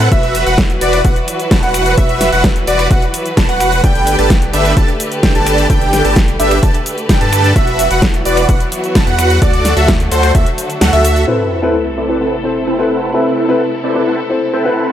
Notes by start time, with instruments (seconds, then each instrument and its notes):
Already playing: string section B4
0.00 shaker
0.12 sub bass E1, string section E3 F#3 F#4, supersaw synth F#4 E5, analog synth lead E5, kick, closed hi-hat, shaker
0.23 closed hi-hat, shaker
0.35 open hi-hat, shaker
0.46 sub bass E1, supersaw synth F#4 B4 F#5, analog synth lead F#5, closed hi-hat, shaker
0.58 kick, snare, closed hi-hat, shaker
0.70 closed hi-hat, shaker
0.81 sub bass E1, supersaw synth F#4 B4 D5, analog synth lead D5, open hi-hat, shaker
0.93 finger snap, closed hi-hat, shaker
1.05 sub bass E1, supersaw synth F#4 F#5, analog synth lead F#5, kick, closed hi-hat, shaker
1.16 closed hi-hat, shaker
1.28 open hi-hat, shaker
1.40 closed hi-hat, shaker
1.51 sub bass E1, supersaw synth F#4 B4 A5, analog synth lead A5, kick, snare, closed hi-hat, shaker
1.63 sub bass E1, supersaw synth F#4 B4 F#5, analog synth lead F#5, closed hi-hat, shaker
1.74 finger snap, open hi-hat, shaker
1.86 closed hi-hat, shaker
1.98 sub bass E1, supersaw synth F#4 B4 E5, analog synth lead E5, kick, closed hi-hat, shaker
2.09 closed hi-hat, shaker
2.21 snare, open hi-hat, shaker
2.32 sub bass E1, supersaw synth F#4 B4 F#5, analog synth lead F#5, closed hi-hat, shaker
2.44 kick, snare, closed hi-hat, shaker
2.56 closed hi-hat, shaker
2.67 sub bass E1, supersaw synth F#4 B4 D5, analog synth lead D5, open hi-hat, shaker
2.79 finger snap, closed hi-hat, shaker
2.91 sub bass E1, supersaw synth F#4 B4, analog synth lead F#5, kick, closed hi-hat, shaker
3.02 closed hi-hat, shaker
3.14 open hi-hat, shaker
3.26 closed hi-hat, shaker
3.37 sub bass E1, supersaw synth F#4 B4 A5, analog synth lead A5, kick, snare, closed hi-hat, shaker
3.49 sub bass E1, supersaw synth F#4 B4 F#5, analog synth lead F#5, closed hi-hat, shaker
3.60 finger snap, open hi-hat, shaker
3.72 closed hi-hat, shaker
3.84 sub bass G1, string section D3 A3 G4, supersaw synth D4 G4 A4 B4 G5, analog synth lead G5, kick, closed hi-hat, shaker
3.95 closed hi-hat, shaker
4.07 open hi-hat, shaker
4.19 sub bass G1, supersaw synth D4 G4 A4 B4 A5, analog synth lead A5, closed hi-hat, shaker
4.30 kick, snare, closed hi-hat, shaker
4.42 closed hi-hat, shaker
4.53 sub bass G1, supersaw synth D4 G4 A4 B4 E5, analog synth lead E5, open hi-hat, shaker
4.65 finger snap, closed hi-hat, shaker
4.77 sub bass G1, supersaw synth G4 A4 A5, analog synth lead A5, kick, closed hi-hat, shaker
4.88 closed hi-hat, shaker
5.00 open hi-hat, shaker
5.12 closed hi-hat, shaker
5.23 sub bass G1, supersaw synth D4 G4 A4 B4 G5, analog synth lead G5, kick, snare, closed hi-hat, shaker
5.35 sub bass G1, supersaw synth D4 G4 A4 B4 A5, analog synth lead A5, closed hi-hat, shaker
5.47 finger snap, open hi-hat, shaker
5.58 closed hi-hat, shaker
5.70 sub bass G1, supersaw synth A4, analog synth lead G5, kick, closed hi-hat, shaker
5.81 closed hi-hat, shaker
5.93 snare, open hi-hat, shaker
6.05 sub bass G1, supersaw synth D4 G4 A4 B4 A5, analog synth lead A5, closed hi-hat, shaker
6.16 kick, snare, closed hi-hat, shaker
6.28 closed hi-hat, shaker
6.39 sub bass G1, supersaw synth D4 G4 A4 B4 E5, analog synth lead E5, open hi-hat, shaker
6.51 finger snap, closed hi-hat, shaker
6.63 sub bass G1, supersaw synth D4 G4 A4 B4 A5, analog synth lead A5, kick, closed hi-hat, shaker
6.74 closed hi-hat, shaker
6.86 open hi-hat, shaker
6.98 closed hi-hat, shaker
7.09 sub bass G1, supersaw synth D4 G4 A4 B4 G5, analog synth lead G5, kick, snare, closed hi-hat, shaker
7.21 sub bass G2, supersaw synth D4 G4 A4 B4 A5, analog synth lead A5, closed hi-hat, shaker
7.33 finger snap, open hi-hat, shaker
7.44 closed hi-hat, shaker
7.56 sub bass E1, string section E3 F#3 B3 F#4, supersaw synth F#4 B4 E5, analog synth lead E5, kick, closed hi-hat, shaker
7.67 closed hi-hat, shaker
7.79 open hi-hat, shaker
7.91 sub bass E1, supersaw synth F#4 B4 F#5, analog synth lead F#5, closed hi-hat, shaker
8.02 kick, snare, closed hi-hat, shaker
8.14 closed hi-hat, shaker
8.25 sub bass E1, supersaw synth F#4 B4 D5, analog synth lead D5, open hi-hat, shaker
8.37 finger snap, closed hi-hat, shaker
8.49 sub bass E1, supersaw synth F#4 B4, analog synth lead F#5, kick, closed hi-hat, shaker
8.60 closed hi-hat, shaker
8.72 open hi-hat, shaker
8.84 closed hi-hat, shaker
8.95 sub bass E1, supersaw synth F#4 B4 A5, analog synth lead A5, kick, snare, closed hi-hat, shaker
9.07 sub bass E2, supersaw synth F#4 B4 F#5, analog synth lead F#5, closed hi-hat, shaker
9.19 finger snap, open hi-hat, shaker
9.30 closed hi-hat, shaker
9.42 sub bass D2, string section D3 A3, supersaw synth F#4 A4 D5, analog synth lead D5, kick, closed hi-hat, shaker
9.53 closed hi-hat, shaker
9.65 snare, open hi-hat, shaker
9.77 sub bass D2, supersaw synth F#4 A4 E5, analog synth lead E5, closed hi-hat, shaker
9.88 kick, snare, closed hi-hat, shaker
10.00 closed hi-hat, shaker
10.12 sub bass D2, supersaw synth F#4 A4 C5, analog synth lead C5, open hi-hat, shaker
10.23 finger snap, closed hi-hat, shaker
10.35 sub bass D2, supersaw synth F#4 A4 E5, analog synth lead E5, kick, closed hi-hat, shaker
10.46 closed hi-hat, shaker
10.58 open hi-hat, shaker
10.70 closed hi-hat, shaker
10.81 sub bass D2, supersaw synth F#4 A4 F#5, analog synth lead F#5, snare, closed hi-hat, shaker
10.93 sub bass D2, supersaw synth F#4 A4 E5, analog synth lead E5, closed hi-hat, shaker
11.05 finger snap, open hi-hat, shaker
11.16 closed hi-hat, shaker
11.27 string section C3 A3 E4 A4, grand piano C4 E4 A4 B4, supersaw synth C4 E4 A4 B4 E5, sub drop
11.62 grand piano C4 E4 A4 B4, supersaw synth C4 E4 A4 B4 F#5
11.98 supersaw synth C4 E4 A4 B4 D5
12.09 grand piano C4 E4 A4 B4
12.21 supersaw synth C4 E4 A4 B4 F#5
12.44 grand piano C4 E4 A4 C5
12.67 supersaw synth C4 E4 A4 B4 G5
12.79 grand piano C4 E4 A4 B4, supersaw synth C4 E4 A4 B4 F#5
13.13 grand piano C4 E4 A4 B4, supersaw synth C4 E4 A4 B4 E5, string section A4
13.48 grand piano C4 E4 A4 B4, supersaw synth C4 E4 A4 B4 F#5
13.84 supersaw synth C4 E4 A4 B4 D5
13.95 grand piano C4 E4 A4 B4
14.07 supersaw synth C4 E4 A4 B4 F#5
14.30 grand piano C4 E4 A4 C5
14.54 supersaw synth C4 E4 A4 B4 G5
14.64 grand piano C4 E4 A4 B4, supersaw synth C4 E4 A4 B4 F#5